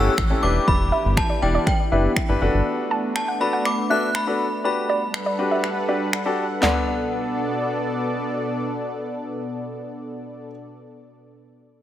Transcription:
0.00 0.41 A3 medium
0.00 0.11 C#4 medium
0.00 0.41 C#4 medium
0.00 0.11 E4 medium
0.00 0.11 G4 medium
0.00 2.37 G4 medium
0.00 0.11 A4 medium
0.00 0.28 F#5 medium
0.00 0.44 E6 loud
0.00 downlifter medium
0.18 0.34 A1 loud
0.18 finger snap loud
0.18 kick loud
0.30 0.43 C#4 medium
0.30 0.41 E4 medium
0.30 0.42 G4 medium
0.30 0.43 A4 medium
0.42 0.59 E1 loud
0.42 2.39 E3 medium
0.42 4.60 B3 medium
0.42 4.60 D4 medium
0.42 1.22 D4 medium
0.42 2.39 E4 medium
0.42 1.22 E4 medium
0.42 1.22 G4 medium
0.42 1.22 B4 medium
0.42 0.66 D6 medium
0.68 0.92 E1 loud
0.68 1.14 B5 medium
0.68 kick loud
0.92 1.03 E5 medium
1.05 1.21 G1 medium
1.17 1.43 A5 medium
1.17 finger snap loud
1.17 kick loud
1.30 1.40 D5 medium
1.42 1.58 E1 medium
1.42 1.66 D4 medium
1.42 1.66 E4 medium
1.42 1.66 G4 medium
1.42 1.66 D5 medium
1.42 1.66 G5 medium
1.55 1.65 D5 medium
1.67 2.37 G5 medium
1.67 finger snap medium
1.67 kick loud
1.92 2.08 F#1 medium
1.92 2.10 D4 medium
1.92 2.10 E4 medium
1.92 2.10 G4 medium
1.92 2.10 B4 medium
1.92 2.13 E5 medium
2.16 finger snap loud
2.16 kick loud
2.29 2.37 G1 medium
2.29 2.40 D4 medium
2.29 2.41 E4 medium
2.29 2.41 G4 medium
2.29 2.40 B4 medium
2.41 2.49 F#1 loud
2.41 4.62 A3 medium
2.41 3.21 D4 medium
2.41 3.21 F#4 medium
2.41 3.21 A4 medium
2.41 3.21 B4 loud
2.54 2.62 G1 loud
2.91 3.02 A5 medium
3.16 3.41 A5 medium
3.16 finger snap loud
3.28 3.39 F#5 medium
3.40 3.64 D4 medium
3.40 3.65 F#4 medium
3.40 3.65 A4 medium
3.40 3.65 B4 medium
3.40 3.66 B5 medium
3.53 3.63 F#5 medium
3.65 3.91 D6 medium
3.65 finger snap medium
3.90 4.08 D4 medium
3.90 4.08 F#4 medium
3.90 4.08 A4 medium
3.90 4.08 B4 medium
3.90 4.25 E5 medium
3.90 4.16 F#6 loud
4.15 4.61 B5 medium
4.15 finger snap loud
4.27 4.45 D4 medium
4.27 4.45 F#4 medium
4.27 4.45 A4 medium
4.27 4.45 B4 medium
4.64 6.61 G3 medium
4.64 5.00 D4 medium
4.64 6.61 D4 medium
4.64 5.01 F#4 medium
4.64 5.01 G4 medium
4.64 6.61 A4 medium
4.64 5.01 B4 medium
4.64 6.61 B4 medium
4.64 6.61 F#5 medium
4.64 6.10 B5 medium
4.89 5.00 D5 medium
5.14 finger snap loud
5.26 5.37 D5 medium
5.39 5.63 D4 medium
5.39 5.63 F#4 medium
5.39 5.63 G4 medium
5.39 5.63 B4 medium
5.51 5.62 E5 medium
5.64 finger snap medium
5.88 6.06 D4 medium
5.88 6.06 F#4 medium
5.88 6.06 G4 medium
5.88 6.07 B4 medium
5.88 6.10 D5 medium
6.13 finger snap loud
6.25 6.44 D4 medium
6.25 6.44 F#4 medium
6.25 6.44 G4 medium
6.25 6.44 A4 medium
6.61 10.49 B2 medium
6.61 10.47 B3 medium
6.61 10.49 B3 medium
6.61 10.49 D4 medium
6.61 10.49 A4 medium
6.61 10.50 A4 medium
6.61 8.07 D5 medium
6.61 10.49 D5 medium
6.61 10.49 F#5 medium
6.61 snare loud
6.61 clap medium
6.61 floor tom loud
6.65 10.51 B4 medium

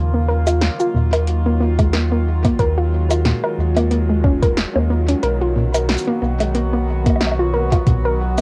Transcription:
0.00 0.69 D#2 loud
0.00 8.41 D#3 medium
0.00 8.41 F#3 medium
0.00 2.55 A#3 medium
0.00 5.19 F4 medium
0.14 0.26 A#3 medium
0.28 0.46 A#4 medium
0.47 0.59 F4 medium
0.47 closed hi-hat medium
0.47 high bongo medium
0.47 shaker medium
0.61 snare loud
0.61 closed hi-hat medium
0.80 0.92 F4 medium
0.80 shaker medium
0.94 2.51 D#2 medium
0.94 1.12 A#2 medium
1.13 1.27 A#4 medium
1.13 closed hi-hat medium
1.13 high bongo soft
1.27 closed hi-hat medium
1.46 1.58 A#3 loud
1.60 1.69 A#3 medium
1.79 1.91 G#3 medium
1.79 kick loud
1.79 closed hi-hat medium
1.79 high bongo medium
1.93 2.02 A#3 medium
1.93 snare loud
1.93 closed hi-hat medium
2.12 2.24 A#3 medium
2.45 2.56 A#3 medium
2.45 kick loud
2.45 closed hi-hat medium
2.45 high bongo soft
2.59 3.33 D#2 loud
2.59 5.20 G#3 medium
2.59 2.77 A#4 medium
2.59 kick medium
2.59 closed hi-hat medium
2.78 2.89 F4 medium
3.11 3.22 F4 medium
3.11 closed hi-hat medium
3.11 high bongo soft
3.11 shaker medium
3.25 3.43 A#2 medium
3.25 snare loud
3.25 closed hi-hat medium
3.44 3.57 A#4 medium
3.44 high bongo soft
3.58 4.26 D#2 medium
3.77 3.88 A#3 loud
3.77 closed hi-hat medium
3.77 high bongo medium
3.91 4.00 A#3 medium
3.91 closed hi-hat medium
4.09 4.21 G#3 medium
4.24 4.65 D#1 loud
4.24 4.33 C#4 loud
4.24 kick loud
4.42 4.54 A#4 medium
4.42 kick loud
4.42 closed hi-hat medium
4.57 snare loud
4.57 closed hi-hat medium
4.75 5.15 D#2 medium
4.75 4.89 A#3 medium
4.75 high bongo medium
4.90 5.08 A#3 medium
5.08 5.20 C#4 medium
5.08 closed hi-hat medium
5.23 5.97 B1 loud
5.23 8.41 B3 medium
5.23 8.41 F#4 medium
5.23 5.40 A#4 medium
5.23 closed hi-hat soft
5.41 5.53 F4 medium
5.56 5.73 A#2 medium
5.74 5.88 A#4 medium
5.74 closed hi-hat medium
5.74 high bongo soft
5.74 shaker medium
5.89 snare loud
5.89 closed hi-hat soft
5.92 closed hi-hat soft
5.94 closed hi-hat soft
5.97 closed hi-hat soft
5.97 shaker medium
5.99 closed hi-hat soft
6.02 closed hi-hat soft
6.05 6.19 A#3 loud
6.05 closed hi-hat soft
6.22 7.78 B1 medium
6.22 6.31 A#3 medium
6.40 6.52 G#3 medium
6.40 closed hi-hat medium
6.40 high bongo soft
6.55 6.64 A#3 medium
6.55 closed hi-hat soft
6.73 6.85 A#3 medium
7.06 7.18 A#3 medium
7.06 kick loud
7.06 closed hi-hat medium
7.06 high bongo soft
7.10 high bongo soft
7.16 high bongo soft
7.21 snare loud
7.21 closed hi-hat medium
7.21 high bongo soft
7.27 high bongo soft
7.32 high bongo soft
7.39 7.51 F4 medium
7.54 7.71 A#4 medium
7.72 7.84 F4 medium
7.72 kick loud
7.72 closed hi-hat medium
7.72 high bongo soft
7.87 8.41 B1 loud
7.87 8.04 A#2 medium
7.87 kick medium
7.87 closed hi-hat soft
8.05 8.19 A#4 medium

